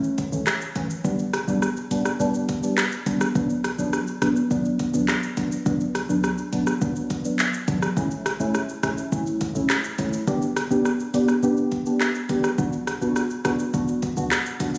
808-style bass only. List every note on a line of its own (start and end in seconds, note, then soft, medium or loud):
0.00 0.29 A1 loud
0.32 0.45 B1 medium
1.05 1.44 G1 loud
1.48 1.74 A1 loud
1.91 2.04 G1 medium
2.20 2.46 G1 loud
3.07 3.20 G1 medium
3.35 3.75 B1 loud
3.79 4.05 A1 medium
4.22 4.35 B1 loud
4.51 4.90 B1 loud
4.94 5.07 C#2 loud
5.66 6.05 B1 loud
6.09 6.35 C#2 medium
6.53 6.66 B1 loud
6.82 7.08 B1 loud
7.68 7.81 B1 medium
7.97 8.36 A1 loud
8.40 8.66 G1 medium
8.83 8.96 A1 medium
9.12 9.52 A1 loud
9.55 9.68 B1 medium
10.28 10.67 G1 loud
10.71 10.97 A1 medium
11.14 11.27 G1 medium
11.43 11.69 G1 loud
12.29 12.43 G1 medium
12.58 12.98 B1 loud
13.02 13.28 A1 medium
13.45 13.58 B1 loud
13.74 14.13 B1 loud
14.17 14.30 C#2 medium